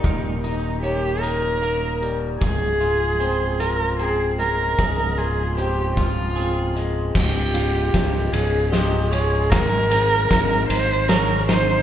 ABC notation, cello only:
X:1
M:6/8
L:1/8
Q:3/8=51
K:Dblyd
V:1 name="Cello"
E E G B2 z | A3 B A B- | B A G F2 z | G3 A G A |
B3 c B c |]